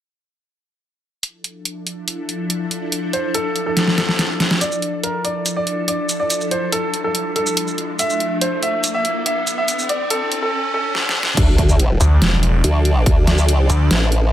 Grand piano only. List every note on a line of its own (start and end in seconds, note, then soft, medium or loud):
3.13 3.31 C5 medium
3.35 3.62 A4 medium
3.66 3.93 A4 medium
3.98 4.53 A4 medium
4.61 4.97 D5 medium
5.03 5.22 A#4 medium
5.24 5.52 D5 medium
5.56 5.83 D5 medium
5.88 6.15 D5 medium
6.20 6.47 D5 medium
6.51 6.69 C5 medium
6.72 7.00 A4 medium
7.04 7.31 A4 medium
7.36 7.91 A4 medium
7.99 8.35 E5 loud
8.41 8.60 C5 medium
8.62 8.90 E5 medium
8.94 9.21 E5 medium
9.26 9.53 E5 medium
9.58 9.85 E5 medium
9.89 10.07 D5 medium
10.11 10.38 A4 loud
10.42 10.69 A4 medium
10.74 11.29 A4 loud